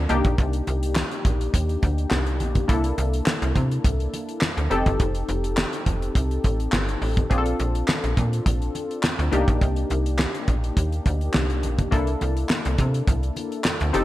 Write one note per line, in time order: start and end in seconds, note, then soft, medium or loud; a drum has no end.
0.09 0.22 C2 loud
0.09 2.65 A#3 medium
0.09 2.65 D4 medium
0.09 2.65 D#4 medium
0.09 2.66 G4 medium
0.09 closed hi-hat medium
0.09 high conga medium
0.24 0.36 A#1 loud
0.24 kick loud
0.24 closed hi-hat soft
0.24 high conga medium
0.38 0.62 C2 loud
0.38 kick loud
0.38 closed hi-hat medium
0.38 muted conga medium
0.53 closed hi-hat medium
0.67 1.04 C2 medium
0.67 closed hi-hat medium
0.67 muted conga soft
0.83 closed hi-hat medium
0.95 snare loud
0.95 clap medium
0.95 high conga medium
1.11 closed hi-hat soft
1.25 1.48 A#1 medium
1.25 kick loud
1.25 closed hi-hat medium
1.25 low conga medium
1.41 closed hi-hat medium
1.54 1.77 D#2 medium
1.54 kick loud
1.54 closed hi-hat loud
1.54 muted conga soft
1.69 closed hi-hat soft
1.82 2.06 D2 loud
1.82 kick loud
1.82 closed hi-hat medium
1.82 muted conga soft
1.98 closed hi-hat soft
2.11 2.42 C2 medium
2.11 snare loud
2.11 clap medium
2.11 high conga medium
2.27 closed hi-hat soft
2.40 2.64 A#1 medium
2.40 closed hi-hat medium
2.40 high conga medium
2.55 kick medium
2.55 closed hi-hat soft
2.55 high conga medium
2.68 2.93 C2 loud
2.68 4.66 A#3 medium
2.68 4.67 D4 medium
2.68 4.67 E4 medium
2.68 4.67 A4 medium
2.68 kick loud
2.68 closed hi-hat medium
2.68 muted conga medium
2.84 closed hi-hat medium
2.98 3.22 C2 loud
2.98 closed hi-hat medium
2.98 muted conga soft
3.13 closed hi-hat medium
3.26 snare loud
3.26 clap medium
3.26 high conga medium
3.42 3.53 C2 loud
3.42 closed hi-hat soft
3.55 3.79 C3 loud
3.55 kick medium
3.55 closed hi-hat medium
3.55 low conga medium
3.72 closed hi-hat medium
3.84 4.08 C2 medium
3.84 kick loud
3.84 closed hi-hat loud
3.84 muted conga soft
3.84 low conga medium
4.00 closed hi-hat soft
4.13 closed hi-hat medium
4.13 muted conga soft
4.29 closed hi-hat soft
4.41 snare loud
4.41 clap loud
4.41 high conga medium
4.57 4.68 D2 medium
4.57 closed hi-hat soft
4.70 4.83 F1 loud
4.70 7.26 C4 medium
4.70 7.26 D#4 medium
4.70 7.27 G4 medium
4.70 7.27 A4 medium
4.70 closed hi-hat medium
4.70 high conga medium
4.86 4.97 G1 loud
4.86 kick medium
4.86 closed hi-hat soft
4.86 high conga medium
5.00 5.23 F1 loud
5.00 kick loud
5.00 closed hi-hat medium
5.00 muted conga medium
5.15 closed hi-hat medium
5.29 5.65 F1 medium
5.29 closed hi-hat medium
5.29 muted conga soft
5.44 closed hi-hat medium
5.57 snare loud
5.57 clap medium
5.57 high conga medium
5.73 closed hi-hat medium
5.86 6.10 F1 medium
5.86 kick medium
5.86 closed hi-hat medium
5.86 low conga medium
6.02 closed hi-hat medium
6.15 6.39 C2 loud
6.15 kick loud
6.15 closed hi-hat loud
6.31 closed hi-hat soft
6.44 6.68 A1 loud
6.44 kick medium
6.44 closed hi-hat medium
6.44 muted conga soft
6.60 closed hi-hat soft
6.72 6.96 G1 medium
6.72 snare loud
6.72 clap medium
6.72 high conga medium
6.89 closed hi-hat soft
7.02 7.25 A1 medium
7.02 open hi-hat medium
7.17 kick loud
7.17 closed hi-hat soft
7.17 high conga medium
7.30 7.54 A#1 loud
7.30 9.28 C4 medium
7.30 9.28 D4 medium
7.30 9.29 F4 medium
7.30 7.38 G#4 medium
7.30 kick loud
7.30 closed hi-hat medium
7.30 muted conga medium
7.38 9.32 A4 medium
7.46 closed hi-hat medium
7.59 7.83 A#1 loud
7.59 closed hi-hat medium
7.59 muted conga soft
7.75 closed hi-hat medium
7.88 snare loud
7.88 clap medium
7.88 high conga medium
8.04 8.15 A#1 medium
8.04 closed hi-hat soft
8.17 8.41 A#2 loud
8.17 kick loud
8.17 closed hi-hat medium
8.17 low conga medium
8.33 closed hi-hat medium
8.46 8.70 A#1 medium
8.46 kick loud
8.46 closed hi-hat loud
8.46 muted conga soft
8.46 low conga medium
8.62 closed hi-hat soft
8.75 closed hi-hat medium
8.75 muted conga soft
8.91 closed hi-hat soft
9.03 snare loud
9.03 clap medium
9.03 high conga medium
9.19 9.30 D2 loud
9.19 closed hi-hat soft
9.32 9.45 C2 loud
9.32 11.88 A#3 medium
9.32 11.88 D4 medium
9.32 11.88 D#4 medium
9.32 11.88 G4 medium
9.32 closed hi-hat medium
9.32 high conga soft
9.48 9.59 A#1 loud
9.48 kick medium
9.48 closed hi-hat soft
9.48 high conga medium
9.61 9.85 C2 loud
9.61 kick loud
9.61 closed hi-hat medium
9.61 muted conga medium
9.76 closed hi-hat medium
9.90 10.27 C2 loud
9.90 closed hi-hat medium
9.90 muted conga soft
10.06 closed hi-hat medium
10.19 snare loud
10.19 clap loud
10.19 high conga medium
10.35 closed hi-hat soft
10.48 10.71 A#1 loud
10.48 kick loud
10.48 closed hi-hat medium
10.48 low conga medium
10.64 closed hi-hat medium
10.77 11.00 D#2 medium
10.77 kick loud
10.77 closed hi-hat loud
10.77 muted conga soft
10.92 closed hi-hat soft
11.06 11.29 D2 loud
11.06 kick medium
11.06 closed hi-hat medium
11.06 muted conga soft
11.21 closed hi-hat soft
11.34 11.65 C2 medium
11.34 snare loud
11.34 clap medium
11.34 high conga medium
11.50 closed hi-hat soft
11.63 11.87 A#1 medium
11.63 closed hi-hat medium
11.63 high conga medium
11.78 kick loud
11.78 closed hi-hat soft
11.78 high conga medium
11.91 12.16 C2 loud
11.91 13.90 A#3 medium
11.91 13.90 D4 medium
11.91 13.90 E4 medium
11.91 13.90 A4 medium
11.91 kick loud
11.91 closed hi-hat medium
11.91 muted conga medium
12.07 closed hi-hat medium
12.21 12.45 C2 loud
12.21 closed hi-hat medium
12.21 muted conga soft
12.37 closed hi-hat soft
12.49 snare loud
12.49 clap loud
12.49 high conga medium
12.65 12.77 C2 loud
12.65 closed hi-hat medium
12.78 13.02 C3 loud
12.78 kick loud
12.78 closed hi-hat medium
12.78 low conga medium
12.94 closed hi-hat medium
13.07 13.31 C2 loud
13.07 kick loud
13.07 closed hi-hat loud
13.07 low conga medium
13.23 closed hi-hat soft
13.36 closed hi-hat medium
13.36 muted conga soft
13.52 closed hi-hat soft
13.64 snare loud
13.64 clap medium
13.64 high conga medium
13.80 13.92 D2 loud
13.80 closed hi-hat soft
13.93 14.04 F1 loud
13.93 14.04 C4 medium
13.93 14.04 D#4 medium
13.93 14.04 G4 medium
13.93 14.04 A4 medium
13.93 closed hi-hat medium
13.93 high conga medium